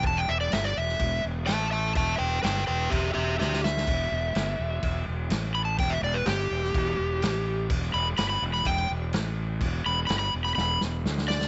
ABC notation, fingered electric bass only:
X:1
M:4/4
L:1/8
Q:1/4=125
K:Em
V:1 name="Fingered electric bass" clef=bass
E,,, E,,, G,,, E,,, E,,, E,,, A,,,2 | E,,, E,,, G,,, E,,, E,,, E,,, D,,2 | E,,, E,,, G,,, E,,, E,,, E,,, A,,,2 | E,,, E,,, G,,, E,,, E,,, E,,, A,,,2 |
E,,, E,,, G,,, E,,, E,,, E,,, A,,,2 | E,,, E,,, G,,, E,,, E,,, E,,, D,,2 |]